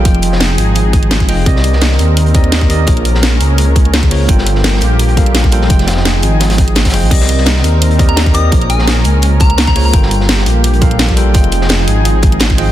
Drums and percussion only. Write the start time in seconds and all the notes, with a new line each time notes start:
0.05 kick, closed hi-hat
0.15 closed hi-hat
0.22 closed hi-hat
0.32 snare
0.40 snare, closed hi-hat
0.58 closed hi-hat
0.75 closed hi-hat
0.93 kick, closed hi-hat
1.03 closed hi-hat
1.11 snare, closed hi-hat
1.20 kick, closed hi-hat
1.29 closed hi-hat, open hi-hat
1.46 kick, closed hi-hat
1.56 snare
1.64 closed hi-hat
1.73 snare
1.81 snare, closed hi-hat
1.91 snare
1.99 closed hi-hat
2.17 closed hi-hat
2.26 closed hi-hat
2.34 kick, closed hi-hat
2.44 closed hi-hat
2.52 snare, closed hi-hat
2.61 kick, closed hi-hat
2.70 closed hi-hat
2.87 kick, closed hi-hat
2.97 closed hi-hat
3.05 closed hi-hat
3.15 snare
3.23 snare, closed hi-hat
3.40 closed hi-hat
3.58 closed hi-hat
3.76 kick, closed hi-hat
3.85 closed hi-hat
3.93 snare, closed hi-hat
4.03 kick, closed hi-hat
4.11 closed hi-hat, open hi-hat
4.29 kick, closed hi-hat
4.38 snare
4.46 closed hi-hat
4.55 snare
4.64 snare, closed hi-hat
4.74 snare
4.81 closed hi-hat
4.99 closed hi-hat
5.09 closed hi-hat
5.17 kick, closed hi-hat
5.26 closed hi-hat
5.35 snare, closed hi-hat
5.44 kick, closed hi-hat
5.52 closed hi-hat
5.61 snare
5.70 kick, closed hi-hat
5.79 snare, closed hi-hat
5.87 snare, closed hi-hat
5.97 snare
6.05 snare, closed hi-hat
6.23 closed hi-hat
6.40 snare, closed hi-hat
6.50 snare, closed hi-hat
6.58 kick, closed hi-hat
6.68 closed hi-hat
6.75 snare, closed hi-hat
6.85 kick, snare, closed hi-hat
6.89 snare, closed hi-hat
6.94 closed hi-hat, open hi-hat
7.11 kick, closed hi-hat, crash
7.20 snare
7.29 closed hi-hat
7.38 snare
7.46 snare, closed hi-hat
7.56 snare
7.64 closed hi-hat
7.82 closed hi-hat
7.91 closed hi-hat
7.99 kick, closed hi-hat
8.09 closed hi-hat
8.17 snare, closed hi-hat
8.26 kick, closed hi-hat
8.34 closed hi-hat
8.52 kick, closed hi-hat
8.62 closed hi-hat
8.70 closed hi-hat
8.79 snare
8.88 snare, closed hi-hat
9.04 closed hi-hat
9.22 closed hi-hat
9.40 kick, closed hi-hat
9.50 closed hi-hat
9.58 snare, closed hi-hat
9.67 kick, closed hi-hat
9.75 closed hi-hat, open hi-hat
9.93 kick, closed hi-hat
10.02 snare
10.11 closed hi-hat
10.21 snare
10.29 snare, closed hi-hat
10.38 snare
10.46 closed hi-hat
10.64 closed hi-hat
10.73 closed hi-hat
10.81 kick, closed hi-hat
10.91 closed hi-hat
10.99 snare, closed hi-hat
11.09 kick, closed hi-hat
11.17 closed hi-hat
11.34 kick, closed hi-hat
11.44 closed hi-hat
11.52 closed hi-hat
11.61 snare
11.69 snare, closed hi-hat
11.87 closed hi-hat
12.05 closed hi-hat
12.23 kick, closed hi-hat
12.32 closed hi-hat
12.40 snare, closed hi-hat
12.50 kick, closed hi-hat
12.58 closed hi-hat, open hi-hat